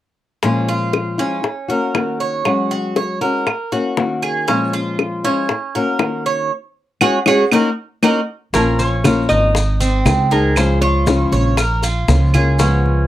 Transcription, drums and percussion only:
0.43 high bongo
0.93 high bongo, claves
1.44 high bongo
1.95 high bongo, low bongo, claves
2.45 high bongo, claves
2.71 high bongo
2.96 high bongo
3.21 high bongo
3.47 high bongo, claves
3.72 high bongo
3.97 high bongo, low bongo
4.23 claves
4.48 high bongo
4.99 high bongo, claves
5.49 high bongo
5.99 high bongo, low bongo, claves
7.01 low bongo, claves
7.26 low bongo, claves
7.52 low bongo, claves
8.03 low bongo, claves
8.54 high bongo, high conga, maracas
8.79 high conga, maracas
9.04 high bongo, high conga, claves, maracas
9.30 high conga, maracas
9.55 high bongo, high conga, maracas
9.81 high conga, maracas
10.06 high bongo, low bongo, high conga, claves, maracas
10.31 maracas
10.56 high bongo, high conga, claves, maracas
10.82 high bongo, high conga
11.07 high bongo, high conga, maracas
11.33 high bongo, maracas
11.57 high bongo, high conga, claves, maracas
11.82 high bongo, high conga, maracas
12.08 high bongo, low bongo, high conga, maracas
12.34 high conga, claves, maracas
12.59 high bongo, high conga, maracas
12.86 high conga

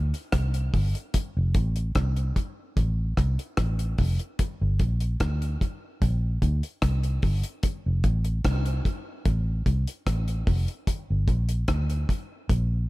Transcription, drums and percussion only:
0.14 closed hi-hat
0.32 kick, cross-stick, closed hi-hat
0.54 closed hi-hat
0.74 kick, open hi-hat
0.95 closed hi-hat
1.14 kick, closed hi-hat
1.54 kick, closed hi-hat
1.76 closed hi-hat
1.95 kick, cross-stick, closed hi-hat
2.16 closed hi-hat
2.36 kick, closed hi-hat
2.77 kick, closed hi-hat
3.17 kick, cross-stick, closed hi-hat
3.39 closed hi-hat
3.57 kick, cross-stick, closed hi-hat
3.79 closed hi-hat
3.98 kick, open hi-hat
4.19 closed hi-hat
4.39 kick, closed hi-hat
4.79 kick, closed hi-hat
5.00 closed hi-hat
5.20 kick, cross-stick, closed hi-hat
5.42 closed hi-hat
5.61 kick, closed hi-hat
6.02 kick, closed hi-hat
6.42 kick, closed hi-hat
6.63 closed hi-hat
6.82 kick, cross-stick, closed hi-hat
7.03 closed hi-hat
7.22 kick, open hi-hat
7.43 closed hi-hat
7.63 kick, closed hi-hat
8.04 kick, closed hi-hat
8.25 closed hi-hat
8.44 kick, cross-stick, closed hi-hat
8.66 closed hi-hat
8.85 kick, closed hi-hat
9.25 kick, closed hi-hat
9.66 kick, closed hi-hat
9.87 closed hi-hat
10.07 kick, cross-stick, closed hi-hat
10.28 closed hi-hat
10.47 kick, open hi-hat
10.68 closed hi-hat
10.87 kick, closed hi-hat
11.28 kick, closed hi-hat
11.49 closed hi-hat
11.68 kick, cross-stick, closed hi-hat
11.90 closed hi-hat
12.09 kick, closed hi-hat
12.49 kick, closed hi-hat

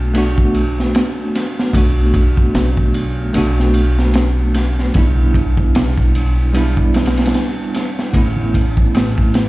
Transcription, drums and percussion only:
0.14 ride, shaker
0.38 kick, shaker
0.54 ride
0.78 snare, shaker
0.94 snare, ride, shaker
1.18 shaker
1.35 snare, ride
1.57 snare, shaker
1.73 kick, ride, low conga, shaker
1.97 shaker
2.14 kick, ride
2.37 kick, shaker
2.54 snare, ride, shaker
2.77 kick, shaker
2.94 ride
3.17 shaker
3.34 ride, shaker
3.58 snare, shaker
3.74 ride
3.97 snare, shaker
4.14 snare, ride, shaker
4.37 shaker
4.54 snare, ride
4.78 snare, shaker
4.94 kick, ride, shaker
5.17 low conga, shaker
5.34 kick, ride
5.57 kick, shaker
5.74 snare, ride, shaker
5.97 kick, shaker
6.15 ride
6.37 shaker
6.54 ride, shaker
6.77 kick, shaker
6.94 snare, ride
7.06 snare, ride
7.16 snare, ride, shaker
7.26 snare, ride
7.34 snare, ride, shaker
7.57 shaker
7.74 snare, ride
7.97 snare, shaker
8.14 kick, ride, low conga, shaker
8.36 low conga, shaker
8.54 kick, ride
8.76 kick, shaker
8.94 snare, ride, shaker
9.18 kick, shaker
9.34 snare, ride

